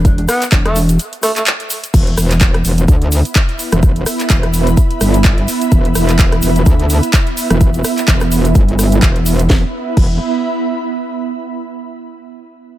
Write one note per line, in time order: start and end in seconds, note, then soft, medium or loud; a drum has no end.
0.00 0.27 E1 loud
0.05 kick loud
0.05 closed hi-hat medium
0.05 shaker soft
0.18 closed hi-hat soft
0.29 0.43 B3 medium
0.29 cross-stick medium
0.29 open hi-hat loud
0.29 shaker medium
0.42 clap soft
0.42 closed hi-hat medium
0.42 shaker medium
0.52 0.98 E1 loud
0.52 kick loud
0.52 clap loud
0.52 closed hi-hat medium
0.52 shaker soft
0.65 0.78 A3 medium
0.65 cross-stick medium
0.65 closed hi-hat soft
0.76 open hi-hat loud
0.76 shaker medium
0.89 closed hi-hat medium
0.89 shaker medium
0.99 closed hi-hat medium
0.99 shaker soft
1.13 closed hi-hat soft
1.23 1.31 A3 medium
1.23 cross-stick medium
1.23 open hi-hat loud
1.23 shaker medium
1.36 1.43 A3 medium
1.36 clap soft
1.36 closed hi-hat medium
1.36 shaker medium
1.46 clap loud
1.46 closed hi-hat medium
1.46 shaker soft
1.60 closed hi-hat soft
1.70 open hi-hat loud
1.70 shaker medium
1.84 closed hi-hat medium
1.84 shaker medium
1.94 2.16 E1 loud
1.94 9.48 B3 medium
1.94 kick loud
1.94 closed hi-hat medium
1.94 crash loud
1.94 shaker soft
2.07 closed hi-hat soft
2.17 2.63 E1 loud
2.17 cross-stick medium
2.17 open hi-hat loud
2.17 shaker medium
2.26 9.50 E4 medium
2.31 clap soft
2.31 closed hi-hat medium
2.31 shaker soft
2.41 kick loud
2.41 clap loud
2.41 closed hi-hat medium
2.41 shaker medium
2.54 cross-stick medium
2.54 closed hi-hat soft
2.59 9.50 E5 medium
2.65 2.87 E1 loud
2.65 open hi-hat loud
2.65 shaker medium
2.78 closed hi-hat medium
2.78 shaker soft
2.88 3.23 D2 loud
2.88 9.50 B5 medium
2.88 kick loud
2.88 closed hi-hat medium
2.88 shaker medium
3.02 closed hi-hat soft
3.12 open hi-hat loud
3.12 shaker loud
3.25 closed hi-hat medium
3.25 shaker soft
3.34 kick loud
3.34 clap loud
3.34 closed hi-hat medium
3.34 shaker medium
3.49 closed hi-hat soft
3.59 open hi-hat loud
3.59 shaker medium
3.72 4.05 E1 loud
3.72 cross-stick medium
3.72 closed hi-hat medium
3.72 shaker soft
3.83 kick loud
3.83 closed hi-hat medium
3.83 shaker medium
3.96 closed hi-hat soft
4.06 cross-stick medium
4.06 open hi-hat loud
4.06 shaker medium
4.20 clap soft
4.20 closed hi-hat medium
4.20 shaker soft
4.30 4.76 E1 medium
4.30 kick loud
4.30 clap loud
4.30 closed hi-hat medium
4.30 shaker medium
4.43 cross-stick medium
4.43 closed hi-hat soft
4.54 open hi-hat loud
4.54 shaker loud
4.67 closed hi-hat medium
4.67 shaker soft
4.77 kick loud
4.77 closed hi-hat medium
4.77 shaker medium
4.91 closed hi-hat soft
5.01 5.46 G1 loud
5.01 cross-stick medium
5.01 open hi-hat loud
5.01 shaker medium
5.14 closed hi-hat medium
5.14 shaker soft
5.24 kick loud
5.24 clap loud
5.24 closed hi-hat medium
5.24 shaker medium
5.38 closed hi-hat soft
5.48 open hi-hat loud
5.48 shaker loud
5.61 closed hi-hat medium
5.61 shaker soft
5.72 5.94 E1 loud
5.72 kick loud
5.72 closed hi-hat medium
5.72 shaker medium
5.85 closed hi-hat soft
5.95 6.41 E1 medium
5.95 cross-stick medium
5.95 open hi-hat loud
5.95 shaker loud
6.09 clap soft
6.09 closed hi-hat soft
6.09 shaker soft
6.19 kick loud
6.19 clap loud
6.19 closed hi-hat medium
6.19 shaker medium
6.32 cross-stick medium
6.32 closed hi-hat soft
6.42 6.65 E1 medium
6.42 open hi-hat loud
6.42 shaker loud
6.56 closed hi-hat medium
6.56 shaker soft
6.66 7.01 D2 medium
6.66 kick loud
6.66 closed hi-hat medium
6.66 shaker medium
6.80 closed hi-hat soft
6.90 open hi-hat loud
6.90 shaker loud
7.03 closed hi-hat medium
7.03 shaker soft
7.13 kick loud
7.13 clap loud
7.13 closed hi-hat medium
7.13 shaker medium
7.27 closed hi-hat soft
7.37 open hi-hat loud
7.37 shaker medium
7.50 7.83 E1 loud
7.50 cross-stick medium
7.50 closed hi-hat medium
7.50 shaker soft
7.61 kick loud
7.61 closed hi-hat medium
7.61 shaker soft
7.74 closed hi-hat soft
7.74 shaker soft
7.84 cross-stick medium
7.84 open hi-hat loud
7.84 shaker loud
7.98 clap soft
7.98 closed hi-hat soft
7.98 shaker soft
8.08 8.54 E1 loud
8.08 kick loud
8.08 clap loud
8.08 closed hi-hat medium
8.08 shaker medium
8.20 cross-stick medium
8.20 closed hi-hat soft
8.20 shaker soft
8.32 open hi-hat loud
8.32 shaker loud
8.45 closed hi-hat soft
8.45 shaker soft
8.55 9.01 G1 loud
8.55 kick loud
8.55 closed hi-hat medium
8.55 shaker medium
8.69 closed hi-hat soft
8.79 cross-stick medium
8.79 open hi-hat loud
8.79 shaker medium
8.92 closed hi-hat soft
8.92 shaker soft
9.02 9.48 E1 loud
9.02 kick loud
9.02 clap loud
9.02 closed hi-hat medium
9.02 shaker medium
9.16 closed hi-hat soft
9.26 open hi-hat loud
9.26 shaker loud
9.39 closed hi-hat medium
9.39 shaker soft
9.50 9.64 E1 loud
9.50 11.35 B3 medium
9.50 kick loud
9.50 snare medium
9.58 11.35 E4 medium
9.65 11.35 E5 medium
9.71 11.35 B5 medium
9.97 10.19 E1 loud
9.97 kick loud
9.97 crash medium